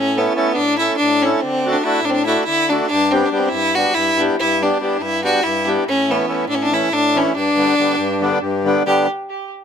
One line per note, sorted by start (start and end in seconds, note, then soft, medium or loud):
0.00 0.27 A2 medium
0.00 0.20 C#4 loud
0.16 0.33 A3 medium
0.16 0.57 B3 medium
0.16 0.33 C#4 medium
0.16 0.33 E4 medium
0.16 0.33 A4 medium
0.35 0.52 A3 medium
0.35 0.52 C#4 medium
0.35 0.52 E4 medium
0.35 0.53 A4 medium
0.55 0.89 A2 medium
0.55 0.78 D4 loud
0.78 0.96 A3 medium
0.78 0.96 C#4 medium
0.78 0.96 E4 medium
0.78 0.96 A4 medium
0.97 1.24 D4 loud
1.01 1.33 A2 medium
1.22 1.40 A3 medium
1.22 1.43 C#4 medium
1.22 1.40 C#4 medium
1.22 1.40 E4 medium
1.22 1.41 A4 medium
1.41 1.74 D3 medium
1.41 1.74 C4 loud
1.65 1.81 A3 medium
1.65 1.81 D4 medium
1.65 1.82 F#4 medium
1.65 1.82 A4 medium
1.73 1.85 D4 medium
1.83 2.00 A3 medium
1.83 2.00 D4 medium
1.83 2.06 E4 loud
1.83 2.01 F#4 medium
1.83 2.01 A4 medium
2.02 2.36 A2 medium
2.02 2.11 D4 loud
2.10 2.16 C4 medium
2.14 2.25 D4 loud
2.26 2.43 A3 medium
2.26 2.43 D4 medium
2.26 2.44 E4 medium
2.26 2.44 F#4 medium
2.26 2.44 A4 medium
2.45 2.80 D3 medium
2.45 2.71 E4 loud
2.69 2.86 A3 medium
2.69 2.86 D4 loud
2.69 2.87 D4 medium
2.69 2.87 F#4 medium
2.69 2.87 A4 medium
2.87 3.13 D4 loud
2.91 3.22 G2 medium
3.11 3.28 G3 medium
3.11 3.29 B3 medium
3.11 3.27 C4 loud
3.11 3.29 D4 medium
3.11 3.29 G4 medium
3.26 3.39 D4 medium
3.31 3.48 G3 medium
3.31 3.48 B3 medium
3.31 3.48 D4 medium
3.31 3.49 G4 medium
3.38 3.50 C4 loud
3.49 3.85 G2 medium
3.49 3.77 E4 loud
3.75 3.92 G3 medium
3.75 3.92 B3 medium
3.75 3.93 D4 medium
3.75 3.96 F#4 loud
3.75 3.93 G4 medium
3.94 4.29 G2 medium
3.94 4.19 E4 loud
4.18 4.35 G3 medium
4.18 4.36 B3 medium
4.18 4.36 D4 medium
4.18 4.37 G4 medium
4.40 4.71 G2 medium
4.40 4.65 E4 loud
4.61 4.77 G3 medium
4.61 4.77 B3 medium
4.61 4.78 D4 medium
4.61 5.03 D4 medium
4.61 4.78 G4 medium
4.80 4.96 G3 medium
4.80 4.97 B3 medium
4.80 4.97 D4 medium
4.80 4.98 G4 medium
5.00 5.33 G2 medium
5.00 5.24 E4 loud
5.23 5.40 G3 medium
5.23 5.40 B3 medium
5.23 5.41 D4 medium
5.23 5.45 F#4 loud
5.23 5.41 G4 medium
5.43 5.77 G2 medium
5.43 5.67 E4 loud
5.66 5.83 G3 medium
5.66 5.84 B3 medium
5.66 5.84 D4 medium
5.66 5.85 G4 medium
5.87 6.19 A2 medium
5.87 6.12 C#4 loud
6.08 6.25 E3 medium
6.08 6.25 A3 medium
6.08 6.48 B3 loud
6.08 6.26 C#4 medium
6.08 6.26 E4 medium
6.27 6.44 E3 medium
6.27 6.45 A3 medium
6.27 6.45 C#4 medium
6.27 6.45 E4 medium
6.47 6.81 A2 medium
6.47 6.56 D4 loud
6.55 6.64 C#4 medium
6.63 6.75 D4 loud
6.71 6.89 E3 medium
6.71 6.89 A3 medium
6.71 6.89 C#4 medium
6.71 6.89 E4 medium
6.71 6.95 E4 loud
6.90 7.25 A2 medium
6.90 7.18 D4 loud
7.15 7.32 E3 medium
7.15 7.33 A3 medium
7.15 7.33 C#4 medium
7.15 7.35 C#4 loud
7.15 7.33 E4 loud
7.35 7.67 G2 medium
7.35 8.37 D4 loud
7.57 7.74 D3 medium
7.57 7.74 G3 medium
7.57 7.75 B3 medium
7.57 7.75 D4 medium
7.78 7.95 D3 medium
7.78 7.95 G3 medium
7.78 7.95 B3 medium
7.78 7.95 D4 medium
7.97 8.31 G2 loud
8.21 8.38 D3 medium
8.21 8.38 G3 medium
8.21 8.39 B3 medium
8.21 8.39 D4 loud
8.42 8.75 G2 loud
8.64 8.82 D3 medium
8.64 8.83 G3 medium
8.64 8.83 B3 loud
8.64 8.83 D4 loud
8.86 9.07 D3 medium
8.86 9.07 G3 medium
8.86 9.07 B3 medium
8.86 9.07 D4 loud
8.86 9.07 G4 loud